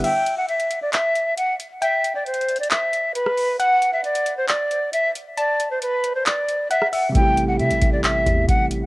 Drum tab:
CC |x-----------------------------------------------|------------------------------------------------|------------------------------------------------|------------------------------------------------|
HH |x-----x-----x--x--x-----x-----x-----x-----x-----|x-----x-----x-x-x-x-x-x-x-----x-----x-----o-----|x-----x-----x--x--x-----x-----x-----x-----x-----|x-----x-----x-----x-----x-----x-----x-----o-----|
CP |------------------------x-----------------------|------------------------x-----------------------|------------------------x-----------------------|------------------------x-----------------------|
SD |------------------------------------------------|---------------------------------------r--------|------------------------------------------------|---------------------------------------r--------|
BD |------------------------------------------------|------------------------------------------------|------------------------------------------------|------------------------------------------------|

CC |------------------------------------------------|
HH |x-----x-----x--x--x-----x-----x-----x-----x-----|
CP |------------------------x-----------------------|
SD |------------------------------------------------|
BD |o-----------------o-----------o-----o-----------|